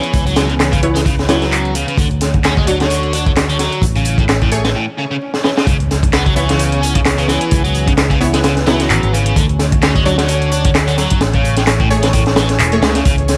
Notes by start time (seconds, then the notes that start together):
Already playing: E3 B3 C#4 G#4 C#5
0.03 closed hi-hat
0.12 C#2 B4, kick, closed hi-hat
0.26 F#3, closed hi-hat
0.36 snare, closed hi-hat
0.49 C#3, closed hi-hat
0.60 snare, clap, closed hi-hat
0.72 C#3, kick, closed hi-hat
0.83 B3 E4 C#5, closed hi-hat
0.95 G#3, snare, closed hi-hat
1.05 C#3, kick, closed hi-hat
1.19 snare, closed hi-hat
1.29 F#3 B3 E4 C#5, snare, closed hi-hat
1.42 snare, closed hi-hat
1.52 clap, closed hi-hat
1.65 closed hi-hat
1.75 C#3, closed hi-hat
1.88 C#3, closed hi-hat
1.98 D2 D3 F#4 C#5, kick, closed hi-hat
2.11 closed hi-hat
2.21 snare, closed hi-hat
2.34 kick, closed hi-hat
2.44 C#4, snare, clap, closed hi-hat
2.57 G#3, kick, closed hi-hat
2.67 F#3 D4 C#5, closed hi-hat
2.80 D3, snare, closed hi-hat
2.90 closed hi-hat
3.03 closed hi-hat
3.13 D4, closed hi-hat
3.26 D3, kick, closed hi-hat
3.36 snare, clap, closed hi-hat
3.49 D3, closed hi-hat
3.59 F#3, snare, closed hi-hat
3.72 closed hi-hat
3.82 A1, kick, closed hi-hat
3.96 C#3, closed hi-hat
4.05 closed hi-hat
4.18 A2, kick, closed hi-hat
4.29 snare, clap, closed hi-hat
4.42 A2, kick, closed hi-hat
4.52 A3 G#4 C#5, closed hi-hat
4.65 E3, snare, closed hi-hat
4.75 A2, swell
4.98 C#3
5.11 C#3
5.34 snare
5.44 E3, snare
5.57 C#3, snare
5.66 C#2 C#3 E3 B3 C#4 G#4 C#5, kick, closed hi-hat, impact
5.80 closed hi-hat
5.91 snare, closed hi-hat
6.03 kick, closed hi-hat
6.13 B3, snare, clap, closed hi-hat
6.26 F#3, kick, closed hi-hat
6.36 E3 B3 E4 C#5, closed hi-hat
6.49 C#3, snare, closed hi-hat
6.59 closed hi-hat
6.72 closed hi-hat
6.82 C#4, closed hi-hat
6.95 C#3, kick, closed hi-hat
7.05 snare, clap, closed hi-hat
7.18 C#3, closed hi-hat
7.28 E3, snare, closed hi-hat
7.41 closed hi-hat
7.51 C#2 B4, kick, closed hi-hat
7.64 F#3, closed hi-hat
7.75 closed hi-hat
7.87 C#3, kick, closed hi-hat
7.97 snare, clap, closed hi-hat
8.10 C#3, kick, closed hi-hat
8.20 B3 E4 C#5, closed hi-hat
8.33 G#3, snare, closed hi-hat
8.44 C#3, snare, closed hi-hat
8.57 snare, closed hi-hat
8.66 F#3 B3 E4 C#5, snare, closed hi-hat
8.80 snare, closed hi-hat
8.90 G#1, clap, closed hi-hat
9.03 G#1, closed hi-hat
9.13 C#3, closed hi-hat
9.26 C#3, closed hi-hat
9.36 D2 D3 F#4 C#5, kick, closed hi-hat
9.49 closed hi-hat
9.59 snare, closed hi-hat
9.72 kick, closed hi-hat
9.82 C#4, snare, clap, closed hi-hat
9.95 G#3, kick, closed hi-hat
10.05 F#3 D4 C#5, closed hi-hat
10.18 D3, snare, closed hi-hat
10.28 closed hi-hat
10.42 closed hi-hat
10.52 D4, closed hi-hat
10.65 D3, kick, closed hi-hat
10.75 snare, clap, closed hi-hat
10.87 D3, closed hi-hat
10.98 F#3, snare, closed hi-hat
11.10 kick, closed hi-hat
11.20 A1 E3 A3 G#4 C#5, snare, closed hi-hat
11.33 C#3, kick, closed hi-hat
11.45 closed hi-hat
11.57 A2, snare, closed hi-hat
11.67 snare, clap, closed hi-hat
11.80 A2, kick, closed hi-hat
11.90 A3 G#4 C#5, closed hi-hat
12.03 E3, snare, closed hi-hat
12.13 A2, kick, closed hi-hat
12.26 snare, closed hi-hat
12.36 E3, snare, closed hi-hat
12.49 snare, closed hi-hat
12.59 E1, clap, closed hi-hat
12.72 A3 G#4 C#5, closed hi-hat
12.82 C#2 G#2, snare, closed hi-hat
12.95 C#3, snare, closed hi-hat
13.05 C#2 C#3 B3, kick, closed hi-hat
13.18 closed hi-hat
13.28 snare, closed hi-hat